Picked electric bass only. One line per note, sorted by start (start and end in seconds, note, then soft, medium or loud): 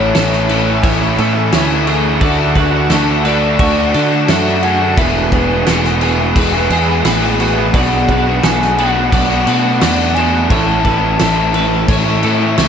0.00 0.12 A1 loud
0.16 0.81 A1 loud
0.84 1.17 A1 medium
1.19 1.52 A2 loud
1.53 2.19 D2 loud
2.21 2.87 D2 loud
2.90 3.56 D2 loud
3.59 3.92 D2 medium
3.95 4.27 D3 medium
4.29 4.94 F#2 loud
4.97 5.63 E1 loud
5.68 6.33 E1 medium
6.36 6.69 E1 medium
6.70 7.03 E2 loud
7.05 7.70 A1 medium
7.74 8.40 B1 medium
8.44 9.09 B1 loud
9.13 9.45 B1 medium
9.48 9.80 B2 loud
9.82 10.47 E2 medium
10.51 11.16 A1 loud
11.21 11.86 A1 loud
11.88 12.21 A1 medium
12.24 12.57 A2 medium
12.58 12.68 C#2 loud